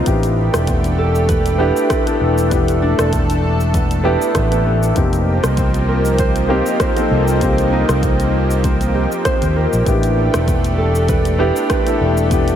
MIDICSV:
0, 0, Header, 1, 6, 480
1, 0, Start_track
1, 0, Tempo, 612245
1, 53, Time_signature, 4, 2, 24, 8
1, 9845, End_track
2, 0, Start_track
2, 0, Title_t, "Harp"
2, 0, Program_c, 0, 46
2, 0, Note_on_c, 0, 60, 84
2, 0, Note_on_c, 0, 63, 70
2, 0, Note_on_c, 0, 72, 78
2, 0, Note_on_c, 0, 75, 97
2, 530, Note_on_c, 0, 59, 77
2, 577, Note_off_c, 0, 60, 0
2, 577, Note_off_c, 0, 72, 0
2, 731, Note_off_c, 0, 75, 0
2, 770, Note_on_c, 0, 69, 73
2, 1008, Note_on_c, 0, 71, 98
2, 1486, Note_off_c, 0, 71, 0
2, 1489, Note_on_c, 0, 71, 77
2, 1932, Note_off_c, 0, 63, 0
2, 1967, Note_off_c, 0, 59, 0
2, 1970, Note_on_c, 0, 59, 76
2, 2211, Note_on_c, 0, 62, 96
2, 2492, Note_off_c, 0, 69, 0
2, 2930, Note_off_c, 0, 59, 0
2, 2933, Note_on_c, 0, 59, 76
2, 3096, Note_off_c, 0, 71, 0
2, 3172, Note_on_c, 0, 67, 76
2, 3412, Note_off_c, 0, 59, 0
2, 3415, Note_on_c, 0, 59, 79
2, 3652, Note_off_c, 0, 59, 0
2, 3655, Note_on_c, 0, 59, 72
2, 4374, Note_on_c, 0, 60, 79
2, 4406, Note_off_c, 0, 62, 0
2, 4421, Note_off_c, 0, 59, 0
2, 4614, Note_on_c, 0, 70, 72
2, 4854, Note_on_c, 0, 72, 100
2, 5018, Note_off_c, 0, 67, 0
2, 5332, Note_off_c, 0, 72, 0
2, 5335, Note_on_c, 0, 72, 81
2, 5813, Note_off_c, 0, 60, 0
2, 5816, Note_on_c, 0, 60, 81
2, 6057, Note_on_c, 0, 63, 92
2, 6277, Note_off_c, 0, 70, 0
2, 6770, Note_off_c, 0, 60, 0
2, 6773, Note_on_c, 0, 60, 81
2, 6887, Note_off_c, 0, 72, 0
2, 7015, Note_on_c, 0, 67, 78
2, 7252, Note_on_c, 0, 72, 105
2, 7497, Note_on_c, 0, 70, 66
2, 8176, Note_off_c, 0, 63, 0
2, 8214, Note_on_c, 0, 59, 75
2, 8261, Note_off_c, 0, 60, 0
2, 8261, Note_off_c, 0, 70, 0
2, 8261, Note_off_c, 0, 72, 0
2, 8452, Note_on_c, 0, 69, 72
2, 8694, Note_on_c, 0, 71, 98
2, 8861, Note_off_c, 0, 67, 0
2, 9168, Note_off_c, 0, 71, 0
2, 9171, Note_on_c, 0, 71, 79
2, 9648, Note_off_c, 0, 59, 0
2, 9651, Note_on_c, 0, 59, 79
2, 9845, Note_off_c, 0, 59, 0
2, 9845, Note_off_c, 0, 69, 0
2, 9845, Note_off_c, 0, 71, 0
2, 9845, End_track
3, 0, Start_track
3, 0, Title_t, "Grand piano"
3, 0, Program_c, 1, 0
3, 0, Control_c, 1, 64, 127
3, 36, Note_on_c, 1, 59, 76
3, 44, Note_on_c, 1, 62, 68
3, 52, Note_on_c, 1, 64, 68
3, 60, Note_on_c, 1, 67, 84
3, 62, Control_c, 1, 64, 0
3, 215, Control_c, 1, 64, 127
3, 1218, Note_off_c, 1, 59, 0
3, 1222, Note_off_c, 1, 62, 0
3, 1226, Note_off_c, 1, 64, 0
3, 1230, Note_off_c, 1, 67, 0
3, 1241, Note_on_c, 1, 59, 97
3, 1245, Note_on_c, 1, 62, 92
3, 1249, Note_on_c, 1, 64, 84
3, 1253, Note_on_c, 1, 67, 103
3, 1587, Note_off_c, 1, 59, 0
3, 1589, Note_off_c, 1, 62, 0
3, 1591, Note_off_c, 1, 64, 0
3, 1593, Note_off_c, 1, 67, 0
3, 1613, Note_on_c, 1, 59, 80
3, 1618, Note_on_c, 1, 62, 74
3, 1623, Note_on_c, 1, 64, 65
3, 1627, Note_on_c, 1, 69, 86
3, 1941, Note_off_c, 1, 59, 0
3, 1943, Note_off_c, 1, 62, 0
3, 1946, Note_off_c, 1, 64, 0
3, 1948, Note_off_c, 1, 69, 0
3, 1955, Note_on_c, 1, 59, 71
3, 1962, Note_on_c, 1, 62, 70
3, 1971, Note_on_c, 1, 64, 70
3, 1978, Note_on_c, 1, 67, 82
3, 3137, Note_off_c, 1, 59, 0
3, 3141, Note_off_c, 1, 62, 0
3, 3145, Note_off_c, 1, 64, 0
3, 3149, Note_off_c, 1, 67, 0
3, 3165, Note_on_c, 1, 59, 104
3, 3170, Note_on_c, 1, 62, 93
3, 3172, Note_on_c, 1, 64, 92
3, 3177, Note_on_c, 1, 67, 108
3, 3509, Note_off_c, 1, 59, 0
3, 3511, Note_off_c, 1, 62, 0
3, 3512, Note_off_c, 1, 64, 0
3, 3515, Note_off_c, 1, 67, 0
3, 3535, Note_on_c, 1, 59, 78
3, 3540, Note_on_c, 1, 62, 70
3, 3542, Note_on_c, 1, 64, 69
3, 3546, Note_on_c, 1, 69, 84
3, 3862, Note_off_c, 1, 59, 0
3, 3864, Note_off_c, 1, 62, 0
3, 3865, Note_off_c, 1, 64, 0
3, 3867, Note_off_c, 1, 69, 0
3, 3878, Note_on_c, 1, 58, 73
3, 3886, Note_on_c, 1, 60, 66
3, 3894, Note_on_c, 1, 63, 70
3, 3901, Control_c, 1, 64, 0
3, 3903, Note_on_c, 1, 67, 83
3, 4061, Control_c, 1, 64, 127
3, 5059, Note_off_c, 1, 58, 0
3, 5063, Note_off_c, 1, 60, 0
3, 5067, Note_off_c, 1, 63, 0
3, 5071, Note_off_c, 1, 67, 0
3, 5085, Note_on_c, 1, 58, 93
3, 5091, Note_on_c, 1, 60, 87
3, 5094, Note_on_c, 1, 63, 86
3, 5097, Note_on_c, 1, 67, 103
3, 5429, Note_off_c, 1, 58, 0
3, 5432, Note_off_c, 1, 60, 0
3, 5433, Note_off_c, 1, 63, 0
3, 5435, Note_off_c, 1, 67, 0
3, 5457, Note_on_c, 1, 58, 73
3, 5462, Note_on_c, 1, 60, 69
3, 5465, Note_on_c, 1, 63, 72
3, 5469, Note_on_c, 1, 69, 86
3, 5783, Note_off_c, 1, 58, 0
3, 5785, Note_off_c, 1, 60, 0
3, 5787, Note_off_c, 1, 63, 0
3, 5789, Note_off_c, 1, 69, 0
3, 5800, Note_on_c, 1, 58, 74
3, 5808, Note_on_c, 1, 60, 65
3, 5816, Note_on_c, 1, 63, 69
3, 5825, Note_on_c, 1, 67, 80
3, 6980, Note_off_c, 1, 58, 0
3, 6984, Note_off_c, 1, 60, 0
3, 6988, Note_off_c, 1, 63, 0
3, 6992, Note_off_c, 1, 67, 0
3, 7723, Note_on_c, 1, 59, 72
3, 7730, Note_on_c, 1, 62, 69
3, 7738, Note_on_c, 1, 64, 70
3, 7744, Control_c, 1, 64, 0
3, 7747, Note_on_c, 1, 67, 83
3, 7904, Control_c, 1, 64, 127
3, 8901, Note_off_c, 1, 59, 0
3, 8905, Note_off_c, 1, 62, 0
3, 8909, Note_off_c, 1, 64, 0
3, 8914, Note_off_c, 1, 67, 0
3, 8926, Note_on_c, 1, 59, 99
3, 8929, Note_on_c, 1, 62, 96
3, 8934, Note_on_c, 1, 64, 92
3, 8937, Note_on_c, 1, 67, 104
3, 9269, Note_off_c, 1, 59, 0
3, 9271, Note_off_c, 1, 62, 0
3, 9274, Note_off_c, 1, 64, 0
3, 9275, Note_off_c, 1, 67, 0
3, 9298, Note_on_c, 1, 59, 74
3, 9302, Note_on_c, 1, 62, 76
3, 9305, Note_on_c, 1, 64, 73
3, 9311, Note_on_c, 1, 69, 83
3, 9623, Note_off_c, 1, 59, 0
3, 9625, Note_off_c, 1, 62, 0
3, 9627, Note_off_c, 1, 64, 0
3, 9630, Note_off_c, 1, 69, 0
3, 9637, Note_on_c, 1, 59, 74
3, 9645, Note_on_c, 1, 62, 68
3, 9655, Note_on_c, 1, 64, 69
3, 9662, Note_on_c, 1, 67, 81
3, 9845, Note_off_c, 1, 59, 0
3, 9845, Note_off_c, 1, 62, 0
3, 9845, Note_off_c, 1, 64, 0
3, 9845, Note_off_c, 1, 67, 0
3, 9845, End_track
4, 0, Start_track
4, 0, Title_t, "Analog synth pad"
4, 0, Program_c, 2, 89
4, 53, Note_on_c, 2, 57, 83
4, 53, Note_on_c, 2, 67, 98
4, 54, Note_on_c, 2, 62, 74
4, 1954, Note_off_c, 2, 67, 0
4, 1973, Note_on_c, 2, 69, 88
4, 3861, Note_off_c, 2, 57, 0
4, 3862, Note_off_c, 2, 62, 0
4, 3873, Note_off_c, 2, 69, 0
4, 3890, Note_on_c, 2, 58, 93
4, 3890, Note_on_c, 2, 63, 77
4, 3891, Note_on_c, 2, 53, 87
4, 3892, Note_on_c, 2, 67, 78
4, 3893, Note_on_c, 2, 60, 75
4, 7700, Note_off_c, 2, 53, 0
4, 7700, Note_off_c, 2, 58, 0
4, 7700, Note_off_c, 2, 63, 0
4, 7701, Note_off_c, 2, 60, 0
4, 7735, Note_on_c, 2, 57, 84
4, 7737, Note_on_c, 2, 62, 77
4, 9845, Note_off_c, 2, 57, 0
4, 9845, Note_off_c, 2, 62, 0
4, 9845, Note_off_c, 2, 67, 0
4, 9845, End_track
5, 0, Start_track
5, 0, Title_t, "Fingered electric bass"
5, 0, Program_c, 3, 33
5, 54, Note_on_c, 3, 33, 94
5, 377, Note_off_c, 3, 33, 0
5, 424, Note_on_c, 3, 28, 86
5, 1336, Note_off_c, 3, 28, 0
5, 1733, Note_on_c, 3, 28, 80
5, 2296, Note_off_c, 3, 28, 0
5, 2344, Note_on_c, 3, 28, 87
5, 3256, Note_off_c, 3, 28, 0
5, 3413, Note_on_c, 3, 33, 86
5, 3853, Note_off_c, 3, 33, 0
5, 3893, Note_on_c, 3, 29, 102
5, 4216, Note_off_c, 3, 29, 0
5, 4264, Note_on_c, 3, 36, 87
5, 5176, Note_off_c, 3, 36, 0
5, 5575, Note_on_c, 3, 36, 79
5, 6137, Note_off_c, 3, 36, 0
5, 6185, Note_on_c, 3, 36, 89
5, 7096, Note_off_c, 3, 36, 0
5, 7388, Note_on_c, 3, 39, 78
5, 7566, Note_off_c, 3, 39, 0
5, 7628, Note_on_c, 3, 34, 91
5, 7710, Note_off_c, 3, 34, 0
5, 7734, Note_on_c, 3, 33, 98
5, 8057, Note_off_c, 3, 33, 0
5, 8108, Note_on_c, 3, 28, 88
5, 9018, Note_off_c, 3, 28, 0
5, 9414, Note_on_c, 3, 28, 84
5, 9845, Note_off_c, 3, 28, 0
5, 9845, End_track
6, 0, Start_track
6, 0, Title_t, "Drums"
6, 48, Note_on_c, 9, 42, 71
6, 51, Note_on_c, 9, 82, 58
6, 52, Note_on_c, 9, 36, 96
6, 127, Note_off_c, 9, 42, 0
6, 130, Note_off_c, 9, 36, 0
6, 130, Note_off_c, 9, 82, 0
6, 182, Note_on_c, 9, 42, 45
6, 185, Note_on_c, 9, 82, 35
6, 261, Note_off_c, 9, 42, 0
6, 264, Note_off_c, 9, 82, 0
6, 421, Note_on_c, 9, 37, 87
6, 421, Note_on_c, 9, 42, 35
6, 425, Note_on_c, 9, 82, 68
6, 500, Note_off_c, 9, 37, 0
6, 500, Note_off_c, 9, 42, 0
6, 503, Note_off_c, 9, 82, 0
6, 528, Note_on_c, 9, 42, 66
6, 531, Note_on_c, 9, 82, 53
6, 532, Note_on_c, 9, 36, 109
6, 607, Note_off_c, 9, 42, 0
6, 610, Note_off_c, 9, 82, 0
6, 611, Note_off_c, 9, 36, 0
6, 661, Note_on_c, 9, 42, 45
6, 664, Note_on_c, 9, 82, 32
6, 739, Note_off_c, 9, 42, 0
6, 742, Note_off_c, 9, 82, 0
6, 904, Note_on_c, 9, 82, 65
6, 982, Note_off_c, 9, 82, 0
6, 1010, Note_on_c, 9, 42, 67
6, 1013, Note_on_c, 9, 36, 105
6, 1013, Note_on_c, 9, 82, 54
6, 1088, Note_off_c, 9, 42, 0
6, 1091, Note_off_c, 9, 36, 0
6, 1091, Note_off_c, 9, 82, 0
6, 1142, Note_on_c, 9, 42, 48
6, 1145, Note_on_c, 9, 82, 36
6, 1220, Note_off_c, 9, 42, 0
6, 1223, Note_off_c, 9, 82, 0
6, 1385, Note_on_c, 9, 82, 71
6, 1463, Note_off_c, 9, 82, 0
6, 1490, Note_on_c, 9, 37, 77
6, 1490, Note_on_c, 9, 42, 65
6, 1493, Note_on_c, 9, 36, 101
6, 1493, Note_on_c, 9, 82, 51
6, 1568, Note_off_c, 9, 37, 0
6, 1568, Note_off_c, 9, 42, 0
6, 1571, Note_off_c, 9, 82, 0
6, 1572, Note_off_c, 9, 36, 0
6, 1623, Note_on_c, 9, 42, 47
6, 1626, Note_on_c, 9, 82, 34
6, 1701, Note_off_c, 9, 42, 0
6, 1704, Note_off_c, 9, 82, 0
6, 1866, Note_on_c, 9, 82, 60
6, 1944, Note_off_c, 9, 82, 0
6, 1971, Note_on_c, 9, 42, 67
6, 1973, Note_on_c, 9, 36, 105
6, 1974, Note_on_c, 9, 82, 63
6, 2049, Note_off_c, 9, 42, 0
6, 2052, Note_off_c, 9, 36, 0
6, 2052, Note_off_c, 9, 82, 0
6, 2104, Note_on_c, 9, 42, 43
6, 2107, Note_on_c, 9, 82, 37
6, 2182, Note_off_c, 9, 42, 0
6, 2185, Note_off_c, 9, 82, 0
6, 2342, Note_on_c, 9, 37, 86
6, 2342, Note_on_c, 9, 42, 32
6, 2345, Note_on_c, 9, 82, 71
6, 2421, Note_off_c, 9, 37, 0
6, 2421, Note_off_c, 9, 42, 0
6, 2424, Note_off_c, 9, 82, 0
6, 2451, Note_on_c, 9, 42, 64
6, 2453, Note_on_c, 9, 36, 119
6, 2454, Note_on_c, 9, 82, 53
6, 2530, Note_off_c, 9, 42, 0
6, 2531, Note_off_c, 9, 36, 0
6, 2533, Note_off_c, 9, 82, 0
6, 2585, Note_on_c, 9, 42, 41
6, 2588, Note_on_c, 9, 82, 34
6, 2663, Note_off_c, 9, 42, 0
6, 2666, Note_off_c, 9, 82, 0
6, 2826, Note_on_c, 9, 82, 62
6, 2904, Note_off_c, 9, 82, 0
6, 2933, Note_on_c, 9, 36, 104
6, 2933, Note_on_c, 9, 42, 69
6, 2936, Note_on_c, 9, 82, 59
6, 3011, Note_off_c, 9, 36, 0
6, 3011, Note_off_c, 9, 42, 0
6, 3014, Note_off_c, 9, 82, 0
6, 3064, Note_on_c, 9, 42, 44
6, 3068, Note_on_c, 9, 82, 36
6, 3143, Note_off_c, 9, 42, 0
6, 3146, Note_off_c, 9, 82, 0
6, 3306, Note_on_c, 9, 82, 67
6, 3385, Note_off_c, 9, 82, 0
6, 3409, Note_on_c, 9, 37, 78
6, 3409, Note_on_c, 9, 42, 63
6, 3412, Note_on_c, 9, 82, 55
6, 3413, Note_on_c, 9, 36, 107
6, 3487, Note_off_c, 9, 37, 0
6, 3487, Note_off_c, 9, 42, 0
6, 3491, Note_off_c, 9, 36, 0
6, 3491, Note_off_c, 9, 82, 0
6, 3542, Note_on_c, 9, 42, 46
6, 3546, Note_on_c, 9, 82, 37
6, 3621, Note_off_c, 9, 42, 0
6, 3624, Note_off_c, 9, 82, 0
6, 3787, Note_on_c, 9, 82, 69
6, 3866, Note_off_c, 9, 82, 0
6, 3888, Note_on_c, 9, 42, 64
6, 3891, Note_on_c, 9, 82, 60
6, 3893, Note_on_c, 9, 36, 106
6, 3966, Note_off_c, 9, 42, 0
6, 3969, Note_off_c, 9, 82, 0
6, 3971, Note_off_c, 9, 36, 0
6, 4021, Note_on_c, 9, 42, 44
6, 4024, Note_on_c, 9, 82, 37
6, 4099, Note_off_c, 9, 42, 0
6, 4103, Note_off_c, 9, 82, 0
6, 4262, Note_on_c, 9, 37, 81
6, 4262, Note_on_c, 9, 42, 32
6, 4265, Note_on_c, 9, 82, 76
6, 4340, Note_off_c, 9, 37, 0
6, 4340, Note_off_c, 9, 42, 0
6, 4343, Note_off_c, 9, 82, 0
6, 4369, Note_on_c, 9, 42, 65
6, 4372, Note_on_c, 9, 82, 53
6, 4373, Note_on_c, 9, 36, 115
6, 4447, Note_off_c, 9, 42, 0
6, 4450, Note_off_c, 9, 82, 0
6, 4451, Note_off_c, 9, 36, 0
6, 4503, Note_on_c, 9, 42, 45
6, 4506, Note_on_c, 9, 82, 34
6, 4581, Note_off_c, 9, 42, 0
6, 4584, Note_off_c, 9, 82, 0
6, 4745, Note_on_c, 9, 82, 68
6, 4823, Note_off_c, 9, 82, 0
6, 4849, Note_on_c, 9, 42, 64
6, 4852, Note_on_c, 9, 82, 59
6, 4853, Note_on_c, 9, 36, 112
6, 4927, Note_off_c, 9, 42, 0
6, 4930, Note_off_c, 9, 82, 0
6, 4931, Note_off_c, 9, 36, 0
6, 4984, Note_on_c, 9, 42, 46
6, 4987, Note_on_c, 9, 82, 35
6, 5062, Note_off_c, 9, 42, 0
6, 5065, Note_off_c, 9, 82, 0
6, 5224, Note_on_c, 9, 82, 71
6, 5302, Note_off_c, 9, 82, 0
6, 5330, Note_on_c, 9, 37, 79
6, 5330, Note_on_c, 9, 42, 61
6, 5333, Note_on_c, 9, 36, 111
6, 5333, Note_on_c, 9, 82, 52
6, 5409, Note_off_c, 9, 37, 0
6, 5409, Note_off_c, 9, 42, 0
6, 5411, Note_off_c, 9, 36, 0
6, 5412, Note_off_c, 9, 82, 0
6, 5461, Note_on_c, 9, 42, 44
6, 5464, Note_on_c, 9, 82, 35
6, 5539, Note_off_c, 9, 42, 0
6, 5542, Note_off_c, 9, 82, 0
6, 5706, Note_on_c, 9, 82, 62
6, 5784, Note_off_c, 9, 82, 0
6, 5812, Note_on_c, 9, 42, 63
6, 5813, Note_on_c, 9, 36, 105
6, 5815, Note_on_c, 9, 82, 56
6, 5890, Note_off_c, 9, 42, 0
6, 5891, Note_off_c, 9, 36, 0
6, 5893, Note_off_c, 9, 82, 0
6, 5945, Note_on_c, 9, 42, 46
6, 5948, Note_on_c, 9, 82, 36
6, 6024, Note_off_c, 9, 42, 0
6, 6027, Note_off_c, 9, 82, 0
6, 6185, Note_on_c, 9, 37, 80
6, 6185, Note_on_c, 9, 42, 31
6, 6188, Note_on_c, 9, 82, 67
6, 6263, Note_off_c, 9, 37, 0
6, 6263, Note_off_c, 9, 42, 0
6, 6266, Note_off_c, 9, 82, 0
6, 6293, Note_on_c, 9, 36, 119
6, 6295, Note_on_c, 9, 42, 60
6, 6298, Note_on_c, 9, 82, 55
6, 6372, Note_off_c, 9, 36, 0
6, 6374, Note_off_c, 9, 42, 0
6, 6377, Note_off_c, 9, 82, 0
6, 6426, Note_on_c, 9, 42, 41
6, 6429, Note_on_c, 9, 82, 34
6, 6505, Note_off_c, 9, 42, 0
6, 6508, Note_off_c, 9, 82, 0
6, 6670, Note_on_c, 9, 82, 65
6, 6748, Note_off_c, 9, 82, 0
6, 6773, Note_on_c, 9, 36, 104
6, 6774, Note_on_c, 9, 42, 67
6, 6777, Note_on_c, 9, 82, 59
6, 6852, Note_off_c, 9, 36, 0
6, 6853, Note_off_c, 9, 42, 0
6, 6856, Note_off_c, 9, 82, 0
6, 6906, Note_on_c, 9, 42, 43
6, 6909, Note_on_c, 9, 82, 36
6, 6984, Note_off_c, 9, 42, 0
6, 6987, Note_off_c, 9, 82, 0
6, 7149, Note_on_c, 9, 82, 76
6, 7227, Note_off_c, 9, 82, 0
6, 7253, Note_on_c, 9, 37, 74
6, 7253, Note_on_c, 9, 42, 58
6, 7254, Note_on_c, 9, 36, 105
6, 7256, Note_on_c, 9, 82, 56
6, 7331, Note_off_c, 9, 37, 0
6, 7331, Note_off_c, 9, 42, 0
6, 7332, Note_off_c, 9, 36, 0
6, 7334, Note_off_c, 9, 82, 0
6, 7385, Note_on_c, 9, 42, 44
6, 7388, Note_on_c, 9, 82, 36
6, 7463, Note_off_c, 9, 42, 0
6, 7467, Note_off_c, 9, 82, 0
6, 7629, Note_on_c, 9, 82, 64
6, 7707, Note_off_c, 9, 82, 0
6, 7733, Note_on_c, 9, 36, 102
6, 7734, Note_on_c, 9, 42, 65
6, 7737, Note_on_c, 9, 82, 58
6, 7811, Note_off_c, 9, 36, 0
6, 7812, Note_off_c, 9, 42, 0
6, 7815, Note_off_c, 9, 82, 0
6, 7865, Note_on_c, 9, 42, 41
6, 7868, Note_on_c, 9, 82, 34
6, 7943, Note_off_c, 9, 42, 0
6, 7946, Note_off_c, 9, 82, 0
6, 8105, Note_on_c, 9, 37, 78
6, 8105, Note_on_c, 9, 42, 32
6, 8108, Note_on_c, 9, 82, 66
6, 8183, Note_off_c, 9, 37, 0
6, 8183, Note_off_c, 9, 42, 0
6, 8186, Note_off_c, 9, 82, 0
6, 8213, Note_on_c, 9, 36, 111
6, 8214, Note_on_c, 9, 42, 57
6, 8217, Note_on_c, 9, 82, 56
6, 8291, Note_off_c, 9, 36, 0
6, 8293, Note_off_c, 9, 42, 0
6, 8296, Note_off_c, 9, 82, 0
6, 8345, Note_on_c, 9, 42, 42
6, 8348, Note_on_c, 9, 82, 33
6, 8424, Note_off_c, 9, 42, 0
6, 8427, Note_off_c, 9, 82, 0
6, 8587, Note_on_c, 9, 82, 60
6, 8665, Note_off_c, 9, 82, 0
6, 8690, Note_on_c, 9, 42, 61
6, 8692, Note_on_c, 9, 36, 104
6, 8693, Note_on_c, 9, 82, 56
6, 8769, Note_off_c, 9, 42, 0
6, 8771, Note_off_c, 9, 36, 0
6, 8772, Note_off_c, 9, 82, 0
6, 8822, Note_on_c, 9, 42, 44
6, 8826, Note_on_c, 9, 82, 33
6, 8901, Note_off_c, 9, 42, 0
6, 8904, Note_off_c, 9, 82, 0
6, 9065, Note_on_c, 9, 82, 67
6, 9144, Note_off_c, 9, 82, 0
6, 9171, Note_on_c, 9, 37, 72
6, 9171, Note_on_c, 9, 42, 61
6, 9172, Note_on_c, 9, 36, 106
6, 9174, Note_on_c, 9, 82, 55
6, 9249, Note_off_c, 9, 37, 0
6, 9249, Note_off_c, 9, 42, 0
6, 9251, Note_off_c, 9, 36, 0
6, 9252, Note_off_c, 9, 82, 0
6, 9302, Note_on_c, 9, 42, 43
6, 9306, Note_on_c, 9, 82, 34
6, 9381, Note_off_c, 9, 42, 0
6, 9384, Note_off_c, 9, 82, 0
6, 9544, Note_on_c, 9, 82, 61
6, 9622, Note_off_c, 9, 82, 0
6, 9651, Note_on_c, 9, 42, 70
6, 9653, Note_on_c, 9, 36, 100
6, 9654, Note_on_c, 9, 82, 58
6, 9729, Note_off_c, 9, 42, 0
6, 9731, Note_off_c, 9, 36, 0
6, 9733, Note_off_c, 9, 82, 0
6, 9782, Note_on_c, 9, 42, 43
6, 9785, Note_on_c, 9, 82, 32
6, 9845, Note_off_c, 9, 42, 0
6, 9845, Note_off_c, 9, 82, 0
6, 9845, End_track
0, 0, End_of_file